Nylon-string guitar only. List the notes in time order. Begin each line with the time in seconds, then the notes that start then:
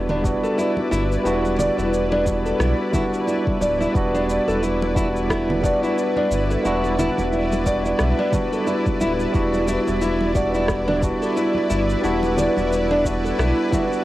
0.10 D4
0.43 A4
0.58 E4
0.91 E4
1.25 E4
1.59 D5
1.78 E4
2.12 D4
2.46 A4
2.60 E4
2.94 E4
3.27 E4
3.61 D5
3.80 E4
4.15 D4
4.48 A4
4.63 E4
4.96 E4
5.30 E4
5.63 D5
5.83 E4
6.17 D4
6.50 A4
6.65 E4
6.99 E4
7.32 E4
7.66 D5
7.85 E4
8.19 D4
8.53 A4
8.67 E4
9.01 E4
9.35 E4
9.68 E4
10.02 E4
10.35 D5
10.55 E4
10.88 D4
11.22 A4
11.37 E4
11.70 E4
12.04 E4
12.38 D5
12.57 E4
12.91 D4
13.24 A4
13.39 E4
13.72 E4